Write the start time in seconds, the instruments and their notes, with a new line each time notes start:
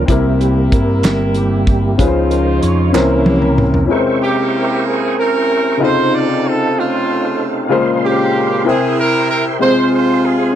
Already playing: upright piano G2 C#4 F4 G4, french horn section A#3
0.05 fingered electric bass C2, upright piano C3 C4 E4, tonewheel organ G3 A#3 E4, french horn section E4, kick, closed hi-hat
0.09 upright piano G4 A#4
0.40 tonewheel organ G4, closed hi-hat
0.72 fingered electric bass G2, tonewheel organ A#4, kick, closed hi-hat
1.03 fingered electric bass G1, snare, clap, closed hi-hat
1.34 tonewheel organ G4, closed hi-hat
1.67 tonewheel organ G4, kick, closed hi-hat
1.98 fingered electric bass C#2, upright piano C#3 C#4 F4 G#4 B4, tonewheel organ F3 D#4 C5, french horn section G#3 C#4 F4, kick, closed hi-hat
2.07 upright piano C5
2.27 tonewheel organ A4 A#4
2.31 closed hi-hat
2.47 tonewheel organ C5
2.63 fingered electric bass F2, tonewheel organ C#5, closed hi-hat
2.92 fingered electric bass C2, french horn section C3 A#3 C#4 E4, upright piano C3 C#4 E4 A#4 C5, tonewheel organ E3 A#3 C#4 A#4, snare, clap
3.26 tonewheel organ G4, high tom
3.40 tonewheel organ A#4, mid tom
3.58 mid tom
3.74 floor tom
3.86 upright piano C3 G#3 C#4 E4
3.90 upright piano A#4 B4, tonewheel organ A#4 C5 E5 G5 C#6
3.98 upright piano C5
4.23 horn section A#3 E4 G4
4.87 horn section G#4
5.19 horn section C#4 E4 A#4
5.77 upright piano C3 C#3 D#4 F4, tonewheel organ D#4 A4 F5
5.82 horn section D#4 A4 C5, upright piano A4 C5
6.14 horn section D5
6.48 horn section A4
6.79 horn section A3 C#4 F4
7.69 upright piano A#2 C#3 G#3 F4 A#4 C5, tonewheel organ A#4 C5 F5 C6
8.03 horn section C4 C#4 G4
8.64 upright piano C3 C4 E4 A#4 C5 G5, horn section E4 G#4, tonewheel organ E5 G5
8.99 horn section A#4
9.30 horn section A#4
9.59 upright piano C3 G#3 C4 F4 G4 C5, tonewheel organ C4 G#4 C5 F5 C6, horn section F4 G#4 C5
9.68 upright piano G#4
9.94 horn section C5
10.26 horn section G#4